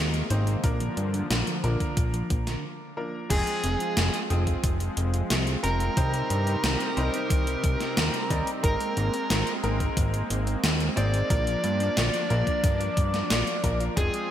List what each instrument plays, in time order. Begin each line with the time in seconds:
Already playing: analog synth bass D#2, analog synth pad C3 G#3 A#3, grand piano G#3 C4 D#4 A#4
0.14 clean electric guitar G#3, closed hi-hat
0.30 analog synth bass G#1, grand piano G#3 C4 D#4 C5, clean electric guitar A#3, closed hi-hat
0.47 clean electric guitar D#3, closed hi-hat
0.64 analog synth bass A#1, clean electric guitar D3, analog synth pad D3 F3, grand piano F3 A#3 D4 A#4, kick, closed hi-hat
0.80 clean electric guitar F3, closed hi-hat
0.97 analog synth bass G2, clean electric guitar A#3, closed hi-hat
1.14 clean electric guitar D3, closed hi-hat
1.30 analog synth bass A#1, clean electric guitar D3, snare, closed hi-hat
1.47 clean electric guitar F3, closed hi-hat
1.63 analog synth bass A#1, grand piano F3 A#3 D4 A#4, clean electric guitar A#3, closed hi-hat
1.80 clean electric guitar D3, kick, closed hi-hat
1.97 analog synth bass A#1, clean electric guitar D3, kick, closed hi-hat
2.13 clean electric guitar F3, closed hi-hat
2.30 analog synth bass A#1, clean electric guitar A#3, kick, closed hi-hat
2.47 clean electric guitar D3, snare, closed hi-hat
2.97 grand piano F3 A#3 D4 A#4
3.30 analog synth bass F1, analog synth pad F3 G#3 C4, clean electric guitar F3, grand piano F3 G#3 C4 G#4, lead electric guitar G#4, synth bell G#4, kick, closed hi-hat, crash
3.47 clean electric guitar G#3, closed hi-hat
3.64 analog synth bass F1, clean electric guitar C4, closed hi-hat
3.80 clean electric guitar F4, closed hi-hat
3.97 analog synth bass F1, clean electric guitar F3, snare, closed hi-hat
4.14 clean electric guitar G#3, closed hi-hat
4.30 analog synth bass F1, grand piano F3 G#3 C4 G#4, clean electric guitar C4, closed hi-hat
4.47 clean electric guitar F4, kick, closed hi-hat
4.64 analog synth bass F1, clean electric guitar F3, kick, closed hi-hat
4.80 clean electric guitar G#3, closed hi-hat
4.97 analog synth bass F1, clean electric guitar C4, closed hi-hat
5.14 clean electric guitar F4, closed hi-hat
5.30 analog synth bass C2, clean electric guitar F3, snare, closed hi-hat
5.47 clean electric guitar G#3, closed hi-hat
5.64 analog synth bass F1, grand piano F3 G#3 C4 A#4, clean electric guitar C4, lead electric guitar A#4, synth bell A#4, closed hi-hat
5.80 clean electric guitar F4, closed hi-hat
5.97 analog synth bass C2, analog synth pad C3 D#4 G4, clean electric guitar D#3, grand piano G3 C4 D#4 C5, kick, closed hi-hat
6.14 clean electric guitar G3, closed hi-hat
6.30 analog synth bass G2, clean electric guitar C4, closed hi-hat
6.47 clean electric guitar D#4, closed hi-hat
6.64 analog synth bass C2, clean electric guitar D#3, snare, closed hi-hat
6.80 clean electric guitar G3, closed hi-hat
6.97 analog synth bass C2, grand piano G3 C4 D#4 C5, clean electric guitar C4, closed hi-hat
7.14 clean electric guitar D#4, closed hi-hat
7.30 analog synth bass C2, clean electric guitar D#3, kick, closed hi-hat
7.47 clean electric guitar G3, closed hi-hat
7.64 analog synth bass C2, clean electric guitar C4, kick, closed hi-hat
7.80 clean electric guitar D#4, snare, closed hi-hat
7.97 analog synth bass D#2, clean electric guitar D#3, snare, closed hi-hat
8.14 clean electric guitar G3, closed hi-hat
8.30 analog synth bass D#2, grand piano G3 C4 D#4 D5, clean electric guitar C4, kick, closed hi-hat
8.47 clean electric guitar D#4, closed hi-hat
8.63 analog synth bass G#1, clean electric guitar D#3, analog synth pad G#3 A#3, grand piano G#3 C4 D#4 A#4, synth bell A#4, lead electric guitar A#4, kick, closed hi-hat
8.80 clean electric guitar G#3, closed hi-hat
8.97 analog synth bass G#1, clean electric guitar A#3, closed hi-hat
9.14 clean electric guitar C4, closed hi-hat
9.30 analog synth bass G#1, clean electric guitar D#3, snare, closed hi-hat
9.47 clean electric guitar G#3, closed hi-hat
9.63 analog synth bass G#1, grand piano G#3 C4 D#4 A#4, clean electric guitar A#3, closed hi-hat
9.80 clean electric guitar C4, kick, closed hi-hat
9.97 analog synth bass G#1, clean electric guitar D#3, kick, closed hi-hat
10.14 clean electric guitar G#3, closed hi-hat
10.30 analog synth bass G#1, clean electric guitar A#3, closed hi-hat
10.47 clean electric guitar C4, closed hi-hat
10.64 analog synth bass D#2, clean electric guitar D#3, snare, closed hi-hat
10.80 clean electric guitar G#3, closed hi-hat
10.97 analog synth bass G#1, grand piano G#3 C4 D#4 C5, clean electric guitar A#3, lead electric guitar D5, synth bell D5, closed hi-hat
11.14 clean electric guitar C4, closed hi-hat
11.30 analog synth bass A#1, clean electric guitar D3, analog synth pad F3 D4, grand piano F3 A#3 D4 A#4, kick, closed hi-hat
11.47 clean electric guitar F3, closed hi-hat
11.64 analog synth bass G2, clean electric guitar A#3, closed hi-hat
11.80 clean electric guitar D4, closed hi-hat
11.97 analog synth bass A#1, clean electric guitar D3, snare, closed hi-hat
12.14 clean electric guitar F3, closed hi-hat
12.30 analog synth bass A#1, grand piano F3 A#3 D4 A#4, clean electric guitar A#3, closed hi-hat
12.47 clean electric guitar D4, kick, closed hi-hat
12.64 analog synth bass G2, clean electric guitar D3, kick, closed hi-hat
12.80 clean electric guitar F3, closed hi-hat
12.97 analog synth bass G2, clean electric guitar D4, kick, closed hi-hat
13.14 clean electric guitar D4, snare, closed hi-hat
13.30 analog synth bass A#1, clean electric guitar A#3, snare, closed hi-hat
13.47 clean electric guitar A#3, closed hi-hat
13.64 analog synth bass A#1, grand piano F3 A#3 D4 A#4, clean electric guitar F3, kick, closed hi-hat
13.80 clean electric guitar F4, closed hi-hat
13.97 analog synth bass F1, grand piano F3 G#3 C4 G#4, clean electric guitar F3, analog synth pad G#3 C4 F4, lead electric guitar G#4, synth bell G#4, kick, closed hi-hat
14.14 clean electric guitar G#3, closed hi-hat